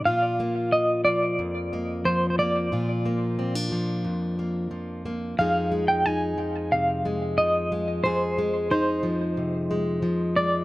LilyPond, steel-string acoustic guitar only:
\new Staff \with { instrumentName = "Steel-string acoustic guitar" } { \clef bass \time 4/4 \key f \dorian \tempo 4 = 90 << { f'8 bes2 bes4 bes8 | f'8 bes8 c'16 d'4~ d'16 bes4 bes8 | <f aes ees' aes'>8 aes8 ees'4. aes4 aes8 | aes'8 aes8 ees'4. aes4 aes8 | } \\ { bes,4. f8 f,4 f4 | bes,4. f8 f,4 f4 | f,4. f8 c4 f4 | f,4. f8 c4 f4 | } >> }